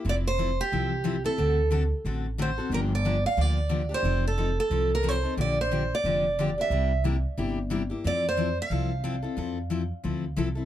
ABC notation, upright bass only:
X:1
M:4/4
L:1/8
Q:"Swing" 1/4=180
K:F
V:1 name="Upright bass" clef=bass
F,,,4 C,,4 | D,,4 A,,,4 | G,,,4 D,,4 | F,,,4 C,,4 |
B,,,4 F,,,4 | C,,4 G,,,4 | F,,4 C,,4 | F,,4 D,,2 C,,2 |]